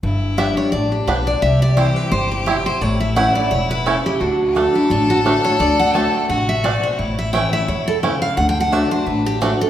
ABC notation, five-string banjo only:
X:1
M:4/4
L:1/8
Q:"Swing" 1/4=172
K:G
V:1 name="Five-string banjo"
z2 [G,B,D] z3 [G,B,D] z | z2 [G,CE] z3 [G,CE] z | z2 [A,^CE] z3 [A,CE] z | z2 [A,D] z3 [A,D] z |
z2 [A,D] z3 [A,D] z | z2 [A,^CE] z3 [A,CE] z | z2 [A,D] z3 [A,D] z |]